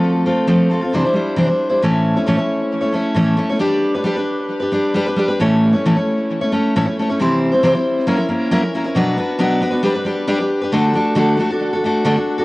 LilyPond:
\new Staff \with { instrumentName = "Steel-string acoustic guitar" } { \time 4/4 \key a \dorian \tempo 4 = 135 <f a c' f' a'>8 <a c' f' a'>8 <f a c' f' a'>8 <a c' f' a'>16 <c' f' a'>16 <c e g d' e' c''>16 <g d' e' c''>16 <g d' e' c''>8 <c e g d' e' c''>16 <g d' e' c''>8 <g d' e' c''>16 | <a, e a cis' e' cis''>8. <a cis' e' cis''>16 <a, e a cis' e' cis''>16 <a cis' e' cis''>4 <a cis' e' cis''>16 <a cis' e' cis''>8 <a, e a cis' e' cis''>8 <a cis' e' cis''>16 <a cis' e' cis''>16 | <g d' g' b'>8. <d' g' b'>16 <g d' g' b'>16 <d' g' b'>4 <d' g' b'>16 <g d' g' b'>8 <g d' g' b'>16 <d' g' b'>16 <g d' g' b'>16 <d' g' b'>16 | <a, e a cis' e' cis''>8. <a cis' e' cis''>16 <a, e a cis' e' cis''>16 <a cis' e' cis''>4 <a cis' e' cis''>16 <a cis' e' cis''>8 <a, e a cis' e' cis''>16 <a cis' e' cis''>16 <a cis' e' cis''>16 <a cis' e' cis''>16 |
<c e g c' e' c''>8. <g c' e' c''>16 <c e g c' e' c''>16 <g c' e' c''>8. <fis ais cis' e' ais'>16 <cis' e' ais'>16 <ais cis' e' ais'>8 <fis ais cis' e' ais'>16 <e' ais'>16 <ais cis' e' ais'>16 <cis' e' ais'>16 | \key d \major <b, fis b d' fis' b'>8 <b d' fis' b'>8 <b, fis b d' fis' b'>8 <b d' fis' b'>16 <b d' fis' b'>16 <g d' g' b'>16 <d' g' b'>16 <g d' g' b'>8 <g d' g' b'>16 <d' g' b'>8 <d' g' b'>16 | <d a d' fis' a'>8 <a d' fis' a'>8 <d a d' fis' a'>8 <a d' fis' a'>16 <d' fis' a'>8 <d' fis' a'>16 <a d' fis' a'>8 <d a d' fis' a'>16 <d' fis' a'>8 <d' fis' a'>16 | }